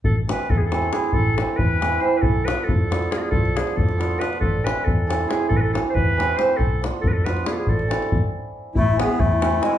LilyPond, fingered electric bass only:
\new Staff \with { instrumentName = "Fingered electric bass" } { \clef bass \time 5/8 \key a \minor \tempo 4 = 138 a,,4 e,4. | a,,4 e,4. | b,,4 f,4. | b,,4 f,4. |
a,,4 e,4. | a,,4 e,4. | b,,4 f,4. | a,,4 e,16 r4 r16 |
a,,4 e,4. | }